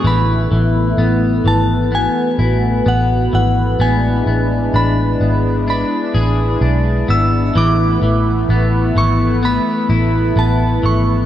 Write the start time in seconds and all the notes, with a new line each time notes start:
Already playing: B3 D4 G#4
0.04 A1 E3 A3 B3 E4 B4 B5
0.51 A1 E3
0.98 A1 B3
1.44 G#1 E3 A5
1.92 B3 F#4 G#5
2.39 A1 E4
2.86 A1 B3 F#5
3.33 G#1 E3 F#5
3.79 A1 G#3 B3 D4 E4 G#5
4.26 A1 B3
4.74 A1 D4 B5
5.20 G#1 B3
5.68 D4 B5
6.14 A1 G#4
6.61 B1 D4
7.08 G#1 B3 E6
7.54 A1 E3 A3 B3 B4 D6
8.02 A1 E3
8.49 A1 B3
8.95 G#1 E3 C#6
9.43 B3 B5
9.89 A1 E4
10.36 A1 B3 A5
10.83 G#1 E3 C#6